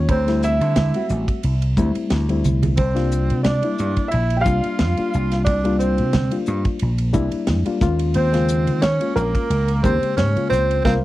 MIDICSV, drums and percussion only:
0, 0, Header, 1, 2, 480
1, 0, Start_track
1, 0, Tempo, 672646
1, 66, Time_signature, 4, 2, 24, 8
1, 7883, End_track
2, 0, Start_track
2, 0, Title_t, "Drums"
2, 62, Note_on_c, 9, 51, 79
2, 63, Note_on_c, 9, 36, 102
2, 67, Note_on_c, 9, 62, 26
2, 133, Note_off_c, 9, 51, 0
2, 134, Note_off_c, 9, 36, 0
2, 139, Note_off_c, 9, 62, 0
2, 198, Note_on_c, 9, 51, 58
2, 199, Note_on_c, 9, 38, 31
2, 269, Note_off_c, 9, 51, 0
2, 271, Note_off_c, 9, 38, 0
2, 304, Note_on_c, 9, 44, 76
2, 375, Note_off_c, 9, 44, 0
2, 437, Note_on_c, 9, 51, 50
2, 508, Note_off_c, 9, 51, 0
2, 541, Note_on_c, 9, 51, 76
2, 543, Note_on_c, 9, 38, 94
2, 549, Note_on_c, 9, 62, 25
2, 549, Note_on_c, 9, 63, 76
2, 549, Note_on_c, 9, 64, 56
2, 613, Note_off_c, 9, 51, 0
2, 614, Note_off_c, 9, 38, 0
2, 621, Note_off_c, 9, 62, 0
2, 621, Note_off_c, 9, 63, 0
2, 621, Note_off_c, 9, 64, 0
2, 671, Note_on_c, 9, 51, 56
2, 743, Note_off_c, 9, 51, 0
2, 780, Note_on_c, 9, 44, 70
2, 851, Note_off_c, 9, 44, 0
2, 914, Note_on_c, 9, 36, 71
2, 915, Note_on_c, 9, 51, 52
2, 985, Note_off_c, 9, 36, 0
2, 986, Note_off_c, 9, 51, 0
2, 1023, Note_on_c, 9, 51, 83
2, 1028, Note_on_c, 9, 62, 25
2, 1094, Note_off_c, 9, 51, 0
2, 1099, Note_off_c, 9, 62, 0
2, 1155, Note_on_c, 9, 51, 57
2, 1227, Note_off_c, 9, 51, 0
2, 1263, Note_on_c, 9, 36, 75
2, 1263, Note_on_c, 9, 44, 79
2, 1270, Note_on_c, 9, 62, 26
2, 1270, Note_on_c, 9, 63, 58
2, 1334, Note_off_c, 9, 44, 0
2, 1335, Note_off_c, 9, 36, 0
2, 1342, Note_off_c, 9, 62, 0
2, 1342, Note_off_c, 9, 63, 0
2, 1393, Note_on_c, 9, 51, 56
2, 1464, Note_off_c, 9, 51, 0
2, 1500, Note_on_c, 9, 51, 73
2, 1502, Note_on_c, 9, 38, 81
2, 1510, Note_on_c, 9, 63, 57
2, 1572, Note_off_c, 9, 51, 0
2, 1573, Note_off_c, 9, 38, 0
2, 1581, Note_off_c, 9, 63, 0
2, 1635, Note_on_c, 9, 51, 52
2, 1642, Note_on_c, 9, 63, 40
2, 1706, Note_off_c, 9, 51, 0
2, 1713, Note_off_c, 9, 63, 0
2, 1742, Note_on_c, 9, 44, 68
2, 1746, Note_on_c, 9, 64, 52
2, 1814, Note_off_c, 9, 44, 0
2, 1817, Note_off_c, 9, 64, 0
2, 1875, Note_on_c, 9, 64, 72
2, 1876, Note_on_c, 9, 51, 58
2, 1946, Note_off_c, 9, 64, 0
2, 1947, Note_off_c, 9, 51, 0
2, 1978, Note_on_c, 9, 51, 80
2, 1983, Note_on_c, 9, 36, 101
2, 1989, Note_on_c, 9, 62, 21
2, 2050, Note_off_c, 9, 51, 0
2, 2055, Note_off_c, 9, 36, 0
2, 2060, Note_off_c, 9, 62, 0
2, 2115, Note_on_c, 9, 51, 58
2, 2116, Note_on_c, 9, 38, 29
2, 2186, Note_off_c, 9, 51, 0
2, 2188, Note_off_c, 9, 38, 0
2, 2223, Note_on_c, 9, 44, 80
2, 2294, Note_off_c, 9, 44, 0
2, 2354, Note_on_c, 9, 51, 49
2, 2426, Note_off_c, 9, 51, 0
2, 2458, Note_on_c, 9, 51, 70
2, 2459, Note_on_c, 9, 38, 99
2, 2468, Note_on_c, 9, 62, 25
2, 2468, Note_on_c, 9, 63, 77
2, 2529, Note_off_c, 9, 51, 0
2, 2531, Note_off_c, 9, 38, 0
2, 2539, Note_off_c, 9, 62, 0
2, 2539, Note_off_c, 9, 63, 0
2, 2587, Note_on_c, 9, 51, 53
2, 2659, Note_off_c, 9, 51, 0
2, 2699, Note_on_c, 9, 44, 71
2, 2770, Note_off_c, 9, 44, 0
2, 2829, Note_on_c, 9, 51, 46
2, 2833, Note_on_c, 9, 36, 61
2, 2901, Note_off_c, 9, 51, 0
2, 2904, Note_off_c, 9, 36, 0
2, 2937, Note_on_c, 9, 51, 75
2, 2945, Note_on_c, 9, 62, 22
2, 3008, Note_off_c, 9, 51, 0
2, 3016, Note_off_c, 9, 62, 0
2, 3070, Note_on_c, 9, 51, 49
2, 3141, Note_off_c, 9, 51, 0
2, 3177, Note_on_c, 9, 44, 79
2, 3181, Note_on_c, 9, 36, 79
2, 3249, Note_off_c, 9, 44, 0
2, 3253, Note_off_c, 9, 36, 0
2, 3308, Note_on_c, 9, 51, 49
2, 3379, Note_off_c, 9, 51, 0
2, 3417, Note_on_c, 9, 51, 69
2, 3418, Note_on_c, 9, 38, 92
2, 3425, Note_on_c, 9, 63, 55
2, 3488, Note_off_c, 9, 51, 0
2, 3490, Note_off_c, 9, 38, 0
2, 3496, Note_off_c, 9, 63, 0
2, 3549, Note_on_c, 9, 51, 47
2, 3620, Note_off_c, 9, 51, 0
2, 3663, Note_on_c, 9, 44, 70
2, 3734, Note_off_c, 9, 44, 0
2, 3793, Note_on_c, 9, 51, 57
2, 3794, Note_on_c, 9, 38, 28
2, 3864, Note_off_c, 9, 51, 0
2, 3866, Note_off_c, 9, 38, 0
2, 3898, Note_on_c, 9, 51, 74
2, 3901, Note_on_c, 9, 36, 99
2, 3907, Note_on_c, 9, 62, 24
2, 3970, Note_off_c, 9, 51, 0
2, 3972, Note_off_c, 9, 36, 0
2, 3979, Note_off_c, 9, 62, 0
2, 4031, Note_on_c, 9, 51, 54
2, 4102, Note_off_c, 9, 51, 0
2, 4139, Note_on_c, 9, 44, 75
2, 4210, Note_off_c, 9, 44, 0
2, 4267, Note_on_c, 9, 51, 47
2, 4338, Note_off_c, 9, 51, 0
2, 4375, Note_on_c, 9, 51, 70
2, 4376, Note_on_c, 9, 38, 95
2, 4385, Note_on_c, 9, 62, 24
2, 4385, Note_on_c, 9, 63, 77
2, 4385, Note_on_c, 9, 64, 53
2, 4446, Note_off_c, 9, 51, 0
2, 4447, Note_off_c, 9, 38, 0
2, 4457, Note_off_c, 9, 62, 0
2, 4457, Note_off_c, 9, 63, 0
2, 4457, Note_off_c, 9, 64, 0
2, 4505, Note_on_c, 9, 51, 61
2, 4577, Note_off_c, 9, 51, 0
2, 4610, Note_on_c, 9, 44, 65
2, 4681, Note_off_c, 9, 44, 0
2, 4744, Note_on_c, 9, 51, 47
2, 4747, Note_on_c, 9, 36, 72
2, 4815, Note_off_c, 9, 51, 0
2, 4818, Note_off_c, 9, 36, 0
2, 4848, Note_on_c, 9, 51, 75
2, 4864, Note_on_c, 9, 62, 26
2, 4919, Note_off_c, 9, 51, 0
2, 4935, Note_off_c, 9, 62, 0
2, 4983, Note_on_c, 9, 51, 59
2, 5054, Note_off_c, 9, 51, 0
2, 5091, Note_on_c, 9, 44, 73
2, 5095, Note_on_c, 9, 36, 78
2, 5101, Note_on_c, 9, 62, 26
2, 5101, Note_on_c, 9, 63, 71
2, 5162, Note_off_c, 9, 44, 0
2, 5166, Note_off_c, 9, 36, 0
2, 5173, Note_off_c, 9, 62, 0
2, 5173, Note_off_c, 9, 63, 0
2, 5220, Note_on_c, 9, 51, 53
2, 5292, Note_off_c, 9, 51, 0
2, 5330, Note_on_c, 9, 51, 77
2, 5331, Note_on_c, 9, 38, 95
2, 5342, Note_on_c, 9, 63, 61
2, 5401, Note_off_c, 9, 51, 0
2, 5403, Note_off_c, 9, 38, 0
2, 5413, Note_off_c, 9, 63, 0
2, 5463, Note_on_c, 9, 51, 55
2, 5535, Note_off_c, 9, 51, 0
2, 5573, Note_on_c, 9, 44, 72
2, 5574, Note_on_c, 9, 38, 26
2, 5575, Note_on_c, 9, 36, 86
2, 5644, Note_off_c, 9, 44, 0
2, 5646, Note_off_c, 9, 38, 0
2, 5647, Note_off_c, 9, 36, 0
2, 5703, Note_on_c, 9, 51, 63
2, 5775, Note_off_c, 9, 51, 0
2, 5810, Note_on_c, 9, 51, 77
2, 5823, Note_on_c, 9, 62, 26
2, 5881, Note_off_c, 9, 51, 0
2, 5895, Note_off_c, 9, 62, 0
2, 5949, Note_on_c, 9, 51, 63
2, 5950, Note_on_c, 9, 38, 31
2, 6020, Note_off_c, 9, 51, 0
2, 6022, Note_off_c, 9, 38, 0
2, 6054, Note_on_c, 9, 44, 78
2, 6125, Note_off_c, 9, 44, 0
2, 6188, Note_on_c, 9, 51, 48
2, 6260, Note_off_c, 9, 51, 0
2, 6295, Note_on_c, 9, 51, 72
2, 6296, Note_on_c, 9, 38, 96
2, 6305, Note_on_c, 9, 62, 25
2, 6305, Note_on_c, 9, 63, 75
2, 6366, Note_off_c, 9, 51, 0
2, 6368, Note_off_c, 9, 38, 0
2, 6377, Note_off_c, 9, 62, 0
2, 6377, Note_off_c, 9, 63, 0
2, 6427, Note_on_c, 9, 51, 57
2, 6498, Note_off_c, 9, 51, 0
2, 6540, Note_on_c, 9, 44, 67
2, 6612, Note_off_c, 9, 44, 0
2, 6671, Note_on_c, 9, 36, 76
2, 6672, Note_on_c, 9, 51, 53
2, 6742, Note_off_c, 9, 36, 0
2, 6743, Note_off_c, 9, 51, 0
2, 6783, Note_on_c, 9, 51, 79
2, 6784, Note_on_c, 9, 62, 25
2, 6854, Note_off_c, 9, 51, 0
2, 6855, Note_off_c, 9, 62, 0
2, 6909, Note_on_c, 9, 51, 54
2, 6980, Note_off_c, 9, 51, 0
2, 7021, Note_on_c, 9, 36, 78
2, 7022, Note_on_c, 9, 62, 25
2, 7022, Note_on_c, 9, 63, 61
2, 7023, Note_on_c, 9, 44, 80
2, 7092, Note_off_c, 9, 36, 0
2, 7093, Note_off_c, 9, 62, 0
2, 7093, Note_off_c, 9, 63, 0
2, 7095, Note_off_c, 9, 44, 0
2, 7156, Note_on_c, 9, 51, 49
2, 7227, Note_off_c, 9, 51, 0
2, 7262, Note_on_c, 9, 51, 62
2, 7262, Note_on_c, 9, 63, 58
2, 7263, Note_on_c, 9, 38, 87
2, 7333, Note_off_c, 9, 51, 0
2, 7334, Note_off_c, 9, 63, 0
2, 7335, Note_off_c, 9, 38, 0
2, 7397, Note_on_c, 9, 51, 48
2, 7468, Note_off_c, 9, 51, 0
2, 7510, Note_on_c, 9, 44, 74
2, 7511, Note_on_c, 9, 38, 27
2, 7581, Note_off_c, 9, 44, 0
2, 7583, Note_off_c, 9, 38, 0
2, 7641, Note_on_c, 9, 51, 49
2, 7712, Note_off_c, 9, 51, 0
2, 7741, Note_on_c, 9, 63, 94
2, 7744, Note_on_c, 9, 36, 89
2, 7749, Note_on_c, 9, 38, 79
2, 7813, Note_off_c, 9, 63, 0
2, 7815, Note_off_c, 9, 36, 0
2, 7821, Note_off_c, 9, 38, 0
2, 7883, End_track
0, 0, End_of_file